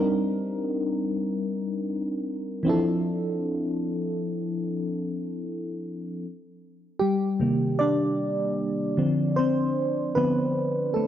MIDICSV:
0, 0, Header, 1, 2, 480
1, 0, Start_track
1, 0, Tempo, 789474
1, 1860, Time_signature, 4, 2, 24, 8
1, 6732, End_track
2, 0, Start_track
2, 0, Title_t, "FM electric piano"
2, 0, Program_c, 0, 5
2, 0, Note_on_c, 0, 55, 83
2, 0, Note_on_c, 0, 60, 75
2, 0, Note_on_c, 0, 62, 78
2, 0, Note_on_c, 0, 63, 77
2, 0, Note_on_c, 0, 70, 87
2, 58, Control_c, 0, 64, 127
2, 1585, Note_off_c, 0, 55, 0
2, 1590, Note_off_c, 0, 60, 0
2, 1595, Note_off_c, 0, 62, 0
2, 1600, Note_off_c, 0, 63, 0
2, 1600, Note_on_c, 0, 52, 64
2, 1604, Note_off_c, 0, 70, 0
2, 1610, Note_on_c, 0, 60, 75
2, 1621, Note_on_c, 0, 62, 75
2, 1629, Control_c, 0, 64, 0
2, 1629, Note_on_c, 0, 64, 75
2, 1638, Note_on_c, 0, 69, 86
2, 1641, Note_on_c, 0, 53, 82
2, 1656, Note_off_c, 0, 52, 0
2, 1732, Control_c, 0, 64, 127
2, 3511, Note_off_c, 0, 60, 0
2, 3516, Note_off_c, 0, 62, 0
2, 3520, Note_off_c, 0, 64, 0
2, 3524, Note_off_c, 0, 69, 0
2, 3526, Note_off_c, 0, 53, 0
2, 3786, Control_c, 0, 64, 0
2, 3889, Control_c, 0, 64, 127
2, 4253, Note_on_c, 0, 67, 98
2, 4264, Note_on_c, 0, 55, 75
2, 4497, Note_on_c, 0, 48, 54
2, 4501, Note_on_c, 0, 51, 51
2, 4505, Note_on_c, 0, 58, 63
2, 4717, Note_off_c, 0, 55, 0
2, 4734, Note_on_c, 0, 74, 103
2, 4746, Note_on_c, 0, 62, 84
2, 4751, Note_off_c, 0, 67, 0
2, 4832, Note_off_c, 0, 48, 0
2, 4834, Note_off_c, 0, 51, 0
2, 4836, Note_off_c, 0, 58, 0
2, 5457, Note_on_c, 0, 50, 62
2, 5461, Note_on_c, 0, 53, 56
2, 5464, Note_on_c, 0, 60, 68
2, 5468, Control_c, 0, 64, 0
2, 5557, Control_c, 0, 64, 127
2, 5679, Note_off_c, 0, 62, 0
2, 5693, Note_on_c, 0, 72, 106
2, 5699, Note_off_c, 0, 60, 0
2, 5707, Note_on_c, 0, 60, 85
2, 5726, Note_off_c, 0, 74, 0
2, 6159, Note_off_c, 0, 60, 0
2, 6171, Note_off_c, 0, 50, 0
2, 6172, Note_on_c, 0, 71, 98
2, 6174, Note_off_c, 0, 53, 0
2, 6179, Note_on_c, 0, 50, 53
2, 6182, Note_on_c, 0, 53, 48
2, 6184, Note_on_c, 0, 60, 59
2, 6186, Note_on_c, 0, 59, 77
2, 6191, Note_off_c, 0, 72, 0
2, 6395, Note_off_c, 0, 50, 0
2, 6397, Note_off_c, 0, 53, 0
2, 6398, Note_off_c, 0, 60, 0
2, 6639, Note_off_c, 0, 59, 0
2, 6651, Note_on_c, 0, 69, 81
2, 6664, Note_on_c, 0, 57, 65
2, 6671, Note_off_c, 0, 71, 0
2, 6732, Note_off_c, 0, 57, 0
2, 6732, Note_off_c, 0, 69, 0
2, 6732, End_track
0, 0, End_of_file